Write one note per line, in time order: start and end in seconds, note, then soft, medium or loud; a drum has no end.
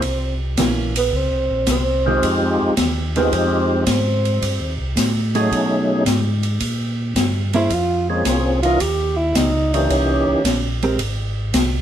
0.00 0.56 C2 medium
0.00 0.38 C4 medium
0.00 kick soft
0.00 ride medium
0.57 1.11 A#1 medium
0.57 0.93 E3 medium
0.57 0.93 A#3 medium
0.57 0.93 C#4 medium
0.57 kick soft
0.57 snare medium
0.57 hi-hat pedal medium
0.57 ride medium
0.96 1.18 B3 medium
0.96 ride medium
1.13 1.31 C#2 medium
1.13 kick soft
1.17 1.70 C4 medium
1.31 1.50 C2 medium
1.50 1.67 A#1 medium
1.67 2.21 C2 medium
1.67 kick soft
1.67 snare medium
1.67 hi-hat pedal medium
1.67 ride medium
1.71 2.58 C4 medium
2.06 2.22 D#3 medium
2.06 2.74 G#3 medium
2.06 2.22 G#3 medium
2.06 2.74 C4 medium
2.06 2.22 C4 medium
2.06 2.75 D#4 medium
2.06 2.74 F4 medium
2.06 2.75 G4 medium
2.23 2.58 F2 medium
2.23 kick soft
2.23 ride medium
2.62 2.70 F2 soft
2.77 3.31 D#2 medium
2.77 kick soft
2.77 snare medium
2.77 hi-hat pedal medium
2.77 ride medium
3.16 3.32 D#3 medium
3.16 3.84 G#3 medium
3.16 3.32 G#3 medium
3.16 3.35 B3 medium
3.16 3.84 C4 medium
3.16 3.32 C4 medium
3.16 3.84 D#4 medium
3.16 3.85 F4 medium
3.16 3.85 G4 medium
3.16 ride soft
3.32 3.86 F2 medium
3.32 3.88 C4 medium
3.32 kick soft
3.32 ride medium
3.87 4.40 G#2 medium
3.87 kick soft
3.87 snare medium
3.87 hi-hat pedal medium
3.87 ride medium
3.91 4.78 C4 medium
4.25 ride soft
4.42 4.60 G2 medium
4.42 kick soft
4.42 ride medium
4.60 4.78 D#2 medium
4.78 4.95 C2 medium
4.96 5.50 A2 medium
4.96 kick soft
4.96 snare medium
4.96 hi-hat pedal medium
4.96 ride medium
5.35 6.04 F#3 medium
5.35 5.50 A3 medium
5.35 6.04 A3 medium
5.35 6.03 C#4 medium
5.35 5.50 D#4 medium
5.35 6.04 D#4 medium
5.35 6.04 G#4 medium
5.35 5.51 G#4 medium
5.35 ride soft
5.51 6.05 B2 medium
5.51 kick soft
5.51 ride medium
6.06 6.59 G#2 medium
6.06 kick soft
6.06 snare medium
6.06 hi-hat pedal medium
6.06 ride medium
6.43 ride soft
6.60 7.14 A#2 medium
6.60 kick soft
6.60 ride medium
7.16 7.69 G2 medium
7.16 kick soft
7.16 snare medium
7.16 hi-hat pedal medium
7.16 ride medium
7.53 7.69 A#3 medium
7.53 7.70 C#4 medium
7.53 7.75 E4 loud
7.53 7.70 G#4 medium
7.53 7.70 C5 medium
7.53 ride medium
7.70 8.24 F2 medium
7.70 8.09 F4 loud
7.70 kick soft
7.70 ride medium
8.09 8.60 F3 medium
8.09 8.29 G#3 medium
8.09 8.61 A#3 medium
8.09 8.60 C4 medium
8.09 8.60 C#4 medium
8.09 8.60 G#4 medium
8.25 8.79 C2 medium
8.25 8.62 C4 medium
8.25 kick soft
8.25 snare medium
8.25 hi-hat pedal medium
8.25 ride medium
8.62 8.79 E3 medium
8.62 8.80 A#3 medium
8.62 8.80 C#4 medium
8.62 8.79 D#4 medium
8.62 8.82 F4 loud
8.62 8.80 A#4 medium
8.62 ride soft
8.80 9.34 D#2 medium
8.80 9.18 G4 medium
8.80 kick soft
8.80 ride medium
9.16 9.39 E4 medium
9.35 9.88 C#2 medium
9.35 9.75 D#4 medium
9.35 kick soft
9.35 snare medium
9.35 hi-hat pedal medium
9.35 ride medium
9.73 10.42 E3 medium
9.73 10.42 A#3 medium
9.73 10.42 C#4 medium
9.73 9.93 D4 medium
9.73 10.42 D#4 medium
9.73 10.43 G4 medium
9.73 ride soft
9.90 10.25 C2 loud
9.90 10.84 C#4 medium
9.90 kick soft
9.90 ride medium
10.27 10.36 C2 soft
10.44 10.98 A#1 medium
10.44 kick soft
10.44 snare medium
10.44 hi-hat pedal medium
10.44 ride medium
10.82 10.98 G#3 medium
10.82 10.98 C4 medium
10.82 10.99 G4 medium
10.82 10.99 A#4 medium
10.82 ride soft
10.99 11.53 G#1 medium
10.99 kick soft
10.99 ride medium
11.54 11.82 C2 medium
11.54 kick soft
11.54 snare medium
11.54 hi-hat pedal medium
11.54 ride medium